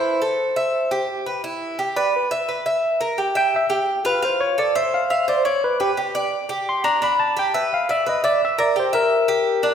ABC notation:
X:1
M:4/4
L:1/8
Q:1/4=172
K:Ephr
V:1 name="Tine electric piano"
c6 z2 | z3 d B z3 | z3 g e z2 B | c _d =d e f e d _d |
B G z4 c' _b | b a g e f e _e d | e d c _B4- B |]
V:2 name="Cuban tres"
E A2 e2 G2 B | E2 G B2 e B e- | e _B G e2 G2 F | F2 A c2 f c d- |
d B G d2 G2 D | D2 G B2 d B e- | e _B G e2 G2 D |]